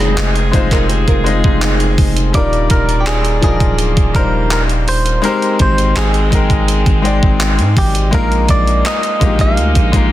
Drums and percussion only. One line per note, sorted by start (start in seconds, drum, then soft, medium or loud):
0.00 closed hi-hat soft
0.17 clap loud
0.17 closed hi-hat medium
0.36 closed hi-hat medium
0.53 kick medium
0.53 closed hi-hat medium
0.71 kick medium
0.71 clap medium
0.71 closed hi-hat medium
0.90 closed hi-hat medium
1.08 kick medium
1.08 closed hi-hat soft
1.26 closed hi-hat medium
1.44 kick medium
1.62 clap loud
1.62 closed hi-hat medium
1.80 closed hi-hat medium
1.98 kick loud
1.98 open hi-hat medium
2.17 closed hi-hat medium
2.34 kick loud
2.34 closed hi-hat medium
2.53 closed hi-hat soft
2.70 kick medium
2.70 closed hi-hat medium
2.89 closed hi-hat medium
3.06 clap loud
3.06 closed hi-hat medium
3.25 closed hi-hat medium
3.43 kick medium
3.43 closed hi-hat medium
3.60 kick medium
3.60 closed hi-hat soft
3.79 closed hi-hat medium
3.97 kick medium
3.97 closed hi-hat soft
4.15 kick loud
4.15 closed hi-hat medium
4.51 clap loud
4.51 closed hi-hat medium
4.69 closed hi-hat medium
4.88 open hi-hat medium
5.06 closed hi-hat medium
5.24 closed hi-hat medium
5.42 closed hi-hat soft
5.59 kick medium
5.59 closed hi-hat medium
5.78 closed hi-hat soft
5.96 clap loud
5.96 closed hi-hat medium
6.14 closed hi-hat soft
6.32 kick medium
6.32 closed hi-hat medium
6.50 kick medium
6.50 closed hi-hat medium
6.68 closed hi-hat medium
6.86 kick medium
6.86 closed hi-hat soft
7.05 closed hi-hat medium
7.23 kick medium
7.40 clap loud
7.40 closed hi-hat medium
7.59 closed hi-hat medium
7.77 kick loud
7.77 open hi-hat medium
7.95 closed hi-hat medium
8.13 kick loud
8.13 closed hi-hat medium
8.32 closed hi-hat soft
8.49 kick medium
8.49 closed hi-hat medium
8.67 closed hi-hat soft
8.85 clap loud
8.85 closed hi-hat medium
9.03 closed hi-hat soft
9.21 kick loud
9.21 closed hi-hat medium
9.39 kick medium
9.39 closed hi-hat medium
9.57 closed hi-hat medium
9.75 kick medium
9.75 closed hi-hat soft
9.93 kick loud
9.93 closed hi-hat medium